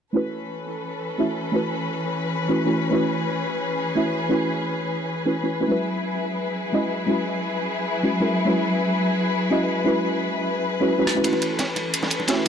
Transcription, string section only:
0.14 E3 C#4 A4 B4
2.92 G#4
5.70 F#3 E4 G#4 B4
11.25 E3 C#4 A4

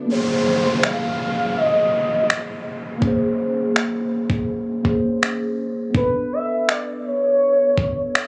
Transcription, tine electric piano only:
Already playing: B3 D4 A4 B4
0.05 A#3 C#4
0.12 G#4 C5
2.98 A#3 C#4
3.04 G#4 C5
4.83 A#3 C#4 G#4
4.88 C5
5.91 B3 D4
5.97 A4 B4

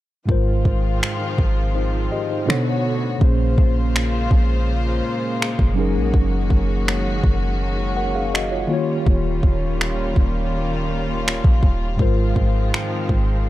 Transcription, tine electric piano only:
0.26 G#2 G#3 F4
0.30 A#4 C5
1.75 D#4 C5
2.12 G4 D#5
2.30 D#4 C5
2.47 B2 B3 D4 A4 C#5
3.18 A#2 A#3 C#4
3.22 G#4 C5
5.75 F#3 C#4 D#4
5.79 G#4 A#4
7.97 A#4 F#5
8.15 G#4 F5
8.34 F#4 D#5
8.52 F4 C#5
8.67 D#3 A#3 F4
8.72 F#4 C#5
8.78 G4
11.96 G#2 G#3 F4
12.00 A#4 C5

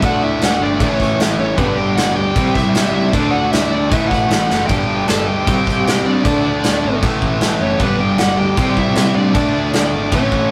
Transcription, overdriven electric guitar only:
0.02 D3 A3 D4
0.79 A2 E3 A3
1.57 G2 D3 G3
2.35 C3 G3 C4
3.13 D3 A3 D4
3.90 A2 E3 A3
4.69 G2 D3 G3
5.46 C3 G3 C4
6.24 D3 A3 D4
7.02 A2 E3 A3
7.79 G2 D3 G3
8.56 C3 G3 C4
9.33 D3 A3 D4
10.12 A2 E3 A3

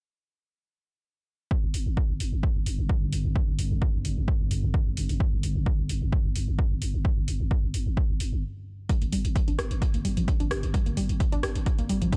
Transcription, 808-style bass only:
1.63 G1
1.74 G1
1.86 G1
2.09 G1
2.20 G1
2.32 G1
2.55 G1
2.66 G1
2.79 G1
3.02 G1
3.12 G1
3.25 G1
3.48 G1
3.59 G1
3.71 G1
3.94 G1
4.05 G1
4.17 G1
4.40 G1
4.51 G1
4.63 G1
4.86 G1
4.97 G1
5.09 G1
5.32 G1
5.43 G1
5.55 G1
5.79 G1
5.89 G1
6.02 G1
6.25 G1
6.36 G1
6.48 G1
6.71 G1
6.82 G1
6.94 G1
7.17 G1
7.28 G1
7.40 G1
7.63 G1
7.74 G1
7.86 G1
8.09 G1
8.20 G1
8.32 G1
9.02 G1
9.13 G1
9.25 G1
9.48 G1
9.59 G1
9.71 G1
9.94 G1
10.05 G1
10.17 G1
10.40 G1
10.51 G1
10.63 G1
10.86 G1
10.97 G1
11.09 G1
11.32 G1
11.43 G1
11.55 G1
11.79 G1
11.89 G1
12.02 G1

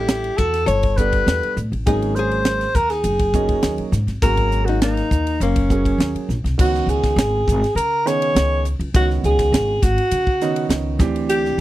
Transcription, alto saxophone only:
Already playing: G4
0.37 A4
0.67 C#5
0.97 B4
1.87 G#4
2.16 C5
2.76 A#4
2.90 G#4
4.23 A#4
4.65 F#4
4.82 D#4
5.41 C#4
6.60 F#4
6.89 G#4
7.76 A#4
8.07 C#5
8.96 F#4
9.25 G#4
9.83 F#4
11.30 G4

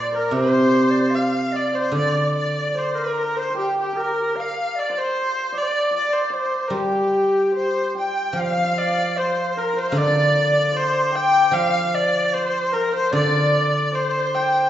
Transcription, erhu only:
Already playing: D5
0.15 A#4
0.37 C5
1.15 F5
1.56 D5
1.75 C5
1.97 D5
2.37 D5
2.79 C5
2.98 A#4
3.39 C5
3.58 G4
3.79 G4
4.00 A#4
4.40 F5
4.79 D5
4.99 C5
5.58 D5
5.96 D5
6.13 C5
6.35 C5
6.68 A#4
6.76 G4
7.56 C5
7.99 G5
8.39 F5
8.78 D5
9.18 C5
9.58 A#4
9.79 C5
9.89 F5
9.98 D5
10.76 C5
11.15 G5
11.53 F5
11.94 D5
12.34 C5
12.74 A#4
12.94 C5
13.15 D5
13.95 C5
14.35 G5

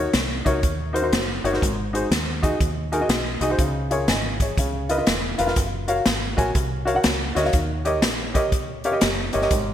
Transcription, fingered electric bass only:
0.14 C2
0.46 C#2
0.63 D#2
1.13 F#1
1.44 G1
1.62 G#1
2.11 D#2
2.61 D#2
3.09 B1
3.41 C2
3.59 C#2
4.08 G#1
4.58 C#2
5.08 E1
5.40 F1
5.57 F#1
6.07 G#1
6.38 A#1
6.55 C2
7.05 C#2
7.36 D2
7.54 D#2
8.03 A#1
8.52 C#2
9.03 F#1
9.35 G1
9.51 G#1

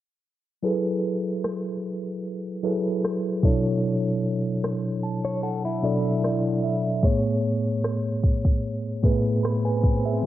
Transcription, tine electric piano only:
0.63 F#3 E4 G#4 A4 B4
2.63 F#3 E4 G#4 A4 B4
3.43 B2 F#3 D4 E4 A4 C#5
5.03 A5
5.43 F#5
5.82 B2 F#3 D4 E4 A4 D5 E5
6.24 D5
6.64 E5
7.02 A2 A3 B3 G#4 C#5
9.02 A2 A3 B3 G#4 B4
9.43 B5
9.65 B4 G#5
10.05 G#4 E5
10.23 C#3

